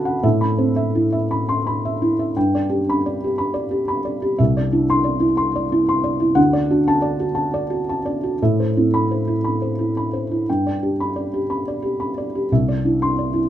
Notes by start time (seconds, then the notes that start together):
Already playing: D2 D4 F#4 D5 F#5 A5 B5
0.05 F#5
0.23 A2 E5
0.41 B5
0.58 C4 C5
0.76 E5
0.95 E4
1.12 E5
1.31 B5
1.49 C6
1.67 B5
1.85 E5
2.02 E4
2.19 E5
2.37 G2 G5
2.55 D5
2.69 D4 G4
2.89 B5
3.06 D5
3.24 G4
3.38 B5
3.54 D5
3.71 G4
3.88 B5
4.05 D5
4.22 G4
4.38 C2 E5
4.57 D5
4.72 D4 E4
4.90 C6
5.04 D5
5.20 E4
5.37 C6
5.55 D5
5.72 E4
5.89 C6
6.04 D5
6.20 E4
6.35 D2 F#5
6.53 D5
6.70 D4 F#4
6.88 A5
7.02 D5
7.20 F#4
7.35 A5
7.54 D5
7.70 F#4
7.89 A5
8.05 D5
8.23 F#4
8.42 A2 E5
8.60 C5
8.77 C4 E4
8.94 B5
9.11 C5
9.27 E4
9.44 B5
9.62 C5
9.79 E4
9.97 B5
10.13 C5
10.31 E4
10.49 G2 G5
10.66 D5
10.83 D4 G4
11.00 B5
11.16 D5
11.34 G4
11.50 B5
11.68 D5
11.82 G4
12.00 B5
12.18 D5
12.35 G4
12.52 C2 E5
12.68 D5
12.85 D4 E4
13.02 C6
13.19 D5
13.34 E4